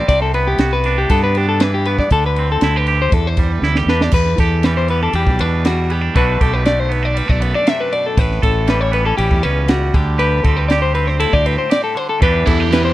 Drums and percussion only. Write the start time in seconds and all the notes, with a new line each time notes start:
0.09 kick, ride
0.34 ride
0.58 snare, ride
0.72 snare
0.84 snare, ride
1.09 kick, ride
1.35 ride
1.60 snare, ride
1.85 ride
1.98 kick, snare
2.10 kick, ride
2.36 ride
2.61 snare, ride
2.87 ride
3.12 kick, ride
3.37 kick, ride
3.63 snare
3.75 snare
3.88 snare
4.01 snare
4.11 kick, crash
4.26 snare
4.38 kick, ride
4.63 snare, ride
4.77 snare
4.88 ride
5.13 ride
5.27 kick
5.39 ride
5.65 snare, ride
5.90 ride
6.15 kick, ride
6.41 kick, ride
6.65 snare, ride
6.91 ride
7.17 ride
7.29 kick
7.42 ride
7.67 snare, ride
7.93 ride
8.17 kick, ride
8.31 snare
8.43 kick, ride
8.68 snare, ride
8.93 ride
9.18 ride
9.31 kick
9.43 ride
9.68 snare, ride
9.94 kick, ride
10.19 ride
10.44 kick, ride
10.70 snare, ride
10.95 ride
11.08 snare
11.20 ride
11.33 kick
11.46 ride
11.71 snare, ride
11.97 ride
12.22 kick, ride
12.47 kick, ride
12.72 snare, ride